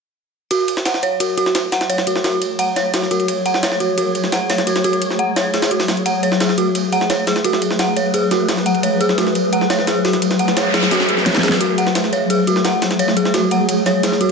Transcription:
0.51 F#3 A3 F#4 G#4 C#5, closed hi-hat, ride
0.68 closed hi-hat, ride
0.77 snare
0.85 F#5, snare, closed hi-hat, ride
0.94 snare
1.03 C#5, closed hi-hat, ride
1.20 F#4, closed hi-hat, ride
1.38 F#4, closed hi-hat, ride
1.46 snare
1.55 snare, closed hi-hat, ride
1.72 F#5, snare, closed hi-hat, open hi-hat
1.81 snare, closed hi-hat
1.90 C#5, closed hi-hat, ride
1.98 snare
2.07 F#4, closed hi-hat, ride
2.16 snare
2.24 F#4, snare, closed hi-hat, ride
2.42 closed hi-hat, ride
2.59 F#5, closed hi-hat, ride
2.76 C#5, snare, closed hi-hat, ride
2.94 F#4, snare, closed hi-hat, ride
3.02 snare
3.11 F#4, closed hi-hat, ride
3.20 closed hi-hat
3.28 closed hi-hat, ride
3.46 F#5, closed hi-hat, ride
3.54 snare
3.63 C#5, snare, closed hi-hat, ride
3.72 snare
3.80 F#4, closed hi-hat, ride
3.98 F#4, closed hi-hat, ride
4.15 closed hi-hat, ride
4.24 snare
4.32 F#5, snare, closed hi-hat, ride
4.50 C#5, snare, closed hi-hat, open hi-hat
4.58 snare, closed hi-hat
4.67 F#4, closed hi-hat, ride
4.76 snare, closed hi-hat
4.84 F#4, closed hi-hat, ride
4.93 closed hi-hat
5.02 closed hi-hat, ride
5.10 snare
5.19 F#5, closed hi-hat
5.36 C#5, snare, closed hi-hat, ride
5.54 G#4, snare, closed hi-hat, open hi-hat
5.62 snare, ride
5.71 F#4, closed hi-hat
5.80 snare, open hi-hat
5.88 snare, closed hi-hat, ride
5.97 closed hi-hat
6.06 B4 F#5, closed hi-hat, ride
6.23 C#5, closed hi-hat, ride
6.32 snare
6.40 G#4, snare, closed hi-hat, ride
6.49 snare
6.58 F#4, closed hi-hat, ride
6.75 closed hi-hat, ride
6.92 F#5, closed hi-hat, ride
7.01 snare
7.10 C#5, snare, closed hi-hat, ride
7.27 G#4, snare, closed hi-hat, open hi-hat
7.36 snare, closed hi-hat
7.44 F#4, closed hi-hat, ride
7.53 snare
7.62 closed hi-hat, ride
7.71 snare
7.79 F#5, snare, closed hi-hat, ride
7.96 C#5, closed hi-hat, ride
8.14 G#4, closed hi-hat, ride
8.31 F#4, snare, closed hi-hat, ride
8.48 snare, closed hi-hat, ride
8.57 snare
8.66 F#5, closed hi-hat, ride
8.75 closed hi-hat
8.83 C#5, closed hi-hat, ride
9.01 G#4, closed hi-hat, ride
9.09 snare
9.18 F#4, snare, closed hi-hat, ride
9.27 snare
9.35 closed hi-hat, ride
9.53 F#5, closed hi-hat, ride
9.61 snare
9.70 C#5, snare, closed hi-hat, ride
9.79 snare
9.87 G#4, snare, closed hi-hat, ride
10.05 F#4, snare, closed hi-hat, open hi-hat
10.13 snare, closed hi-hat
10.22 closed hi-hat, ride, noise sweep
10.31 snare, closed hi-hat
10.39 F#5, closed hi-hat, ride
10.48 snare, closed hi-hat
10.57 C#5, snare, closed hi-hat, ride
10.74 G#4, snare, closed hi-hat, ride
10.83 snare, ride
10.91 F#4, snare, closed hi-hat, ride
11.00 snare, ride
11.09 G#4, closed hi-hat, ride
11.17 snare
11.26 C#5, snare, closed hi-hat, ride
11.35 snare, ride
11.38 snare
11.43 G#4, snare, closed hi-hat, ride
11.49 snare
11.52 snare, closed hi-hat, ride
11.61 F#4 C#5, closed hi-hat, ride
11.78 F#5, closed hi-hat, ride
11.87 snare
11.95 snare, closed hi-hat, ride
12.04 snare
12.13 C#5, closed hi-hat, ride
12.30 G#4, closed hi-hat, ride
12.47 F#4, closed hi-hat, ride
12.56 snare
12.65 F#5, snare, closed hi-hat, ride
12.82 snare, closed hi-hat, open hi-hat
12.91 snare, closed hi-hat
12.99 C#5, closed hi-hat, ride
13.08 snare
13.17 G#4, closed hi-hat, ride
13.25 snare
13.34 F#4, snare, closed hi-hat, ride
13.51 F#5, closed hi-hat, ride
13.69 closed hi-hat, ride
13.86 C#5, snare, closed hi-hat, ride
14.03 G#4, snare, closed hi-hat, ride
14.12 snare
14.21 F#4, closed hi-hat, ride

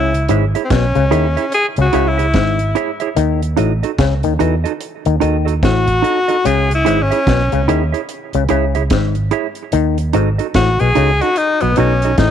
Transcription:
Already playing: C#2 C#3 E4
0.14 closed hi-hat
0.29 G#1 G#2 E4 G#4 C#5 E5, closed hi-hat
0.55 E4 G#4 C#5 E5, closed hi-hat
0.64 C4
0.70 B1 B2 C#4, kick, snare, closed hi-hat
0.95 C#2 C#3, closed hi-hat
1.11 D#2 D#3 E4 G#4 C#5 E5, closed hi-hat
1.37 E4 G#4 C#5 E5, closed hi-hat
1.52 G#4, closed hi-hat
1.76 C#2 C#3, closed hi-hat
1.81 F#4
1.93 C#2 C#3 E4 G#4 C#5 E5, closed hi-hat
2.08 E4
2.18 E4 G#4 C#5 E5, closed hi-hat
2.34 G#1 G#2, kick, snare, closed hi-hat
2.59 closed hi-hat
2.75 E4 G#4 C#5 E5, closed hi-hat
3.00 E4 G#4 C#5 E5, closed hi-hat
3.16 D#2 D#3, closed hi-hat
3.42 closed hi-hat
3.57 A1 A2 D#4 F#4 A4 D#5, closed hi-hat
3.83 D#4 F#4 A4 D#5, closed hi-hat
3.98 C#2 C#3, kick, snare, closed hi-hat
4.23 D#2 D#3, closed hi-hat
4.39 E2 E3 D#4 F#4 A4 D#5, closed hi-hat
4.64 D#4 F#4 A4 D#5, closed hi-hat
4.81 closed hi-hat
5.05 D#2 D#3, closed hi-hat
5.20 D#2 D#3 D#4 F#4 A4 D#5, closed hi-hat
5.45 D#4 F#4 A4 D#5, closed hi-hat
5.63 A1 A2 F#4, kick, snare, closed hi-hat
5.87 kick, closed hi-hat
6.02 D#4 F#4 A4 D#5, closed hi-hat
6.28 D#4 F#4 A4 D#5, closed hi-hat
6.45 C#2 C#3 G#4, closed hi-hat
6.71 E4, closed hi-hat
6.85 G#1 G#2 E4 G#4 C#5 E5, closed hi-hat
7.02 C#4
7.11 E4 G#4 C#5 E5, closed hi-hat
7.27 B1 B2, kick, snare, closed hi-hat
7.52 C#2 C#3, closed hi-hat
7.68 D#2 D#3 E4 G#4 C#5 E5, closed hi-hat
7.92 E4 G#4 C#5 E5, closed hi-hat
8.09 closed hi-hat
8.33 C#2 C#3, closed hi-hat
8.49 C#2 C#3 E4 G#4 C#5 E5, closed hi-hat
8.75 E4 G#4 C#5 E5, closed hi-hat
8.90 G#1 G#2, kick, snare, closed hi-hat
9.15 closed hi-hat
9.31 E4 G#4 C#5 E5, closed hi-hat
9.55 closed hi-hat
9.72 D#2 D#3, closed hi-hat
9.98 closed hi-hat
10.13 G#1 G#2 D#4 F#4 A4 D#5, closed hi-hat
10.38 D#4 F#4 A4 D#5, closed hi-hat
10.54 A1 A2 F#4, kick, snare, closed hi-hat
10.79 B1 B2 G#4, closed hi-hat
10.95 C#2 C#3 D#4 F#4 A4 D#5, closed hi-hat
11.21 D#4 F#4 A4 D#5, closed hi-hat
11.36 D#4, closed hi-hat
11.61 B1 B2 B3, closed hi-hat
11.76 B1 B2 C#4 D#4 F#4 A4 D#5, closed hi-hat
12.02 D#4 F#4 A4 D#5, closed hi-hat
12.18 A1 A2 D#4, kick, snare, closed hi-hat

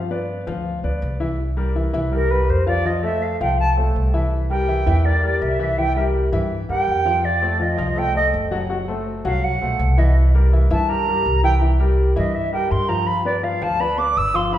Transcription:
Already playing: G2
0.10 B3 B4 D5
0.47 D2 F3 F4 F5
0.83 D2 B3 B4 D5
1.02 C2
1.20 E3 E4 E5
1.57 G3 G4 A#4
1.75 E3 E4 E5
1.93 C2 E3 E4 E5
2.11 G3 G4 A#4
2.30 G3 G4 A#4 B4
2.49 F2 C5
2.67 F3 F4 D5 F5
2.85 F3 F4 D#5 F5
3.03 A3 A4 C5 E5
3.22 F5
3.40 C2 F3 F4 F5 G5
3.60 A5
3.77 A3 A4 C5
3.96 C2
4.13 E3 E4 E5
4.50 G3 G4 A#4 G5
4.68 E3 E4 E5
4.86 E2 E3 E4 E5
5.04 G3 G4 A#4 D5
5.23 G3 G4 A#4
5.42 C2 E5
5.59 E3 E4 E5
5.78 E3 E4 E5 G5
5.96 G3 G4 A#4 E5
6.32 G2 E3 E4 E5
6.69 G2 G3 G4 A#4 G5
6.88 F2
7.05 F3 F4 F5
7.24 D5
7.42 A3 A4 C5
7.60 F3 F4 D#5 F5
7.78 C2 F3 F4 F5
7.96 A3 A4 C5 G5
8.14 A3 A4 C5 D#5
8.34 F#1
8.51 F#3 F#4 F#5
8.69 F#3 F#4 F#5
8.88 A3 A4 C5
9.25 C2 F#3 F#4 F5 F#5
9.44 F#5
9.61 B1 A3 A4 C5
9.79 C2
9.98 E3 E4 D#5 E5
10.34 G3 G4 A#4
10.53 E3 E4 E5
10.71 G2 E3 E4 E5 A5
10.88 G3 G4 A#4 A#5
11.07 G3 G4 A#4
11.26 C2
11.43 E3 E4 E5 G5
11.61 E3 E4 E5
11.80 G3 G4 A#4
12.16 G2 E3 E4 D#5 E5
12.34 E5
12.53 G3 G4 A#4 G5
12.71 G2 C6
12.88 F3 F4 F5 A#5
13.06 B5
13.25 B3 B4 D5
13.43 F3 F4 F5
13.61 D2 F3 F4 F5 A5
13.80 B3 B4 D5 B5
13.98 B3 B4 D5 D6
14.17 G1 E6
14.34 F3 F4 F5 C6
14.53 F3 F4 F5 B5

